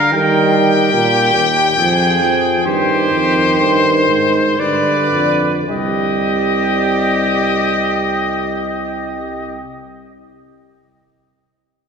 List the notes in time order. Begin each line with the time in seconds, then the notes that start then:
Already playing: D3 A#4 F5
0.13 D#3 G3 A#4 G5
0.54 G4
0.93 A#2
1.35 D#2
1.77 F2 F3 G#4
2.21 F3
2.66 G2 D#3 G4 C5
3.12 F2
3.59 G2 C5
4.08 G#2
4.59 G2 D3 B4 D5
5.13 F2
5.69 C2 G3 G4 D#5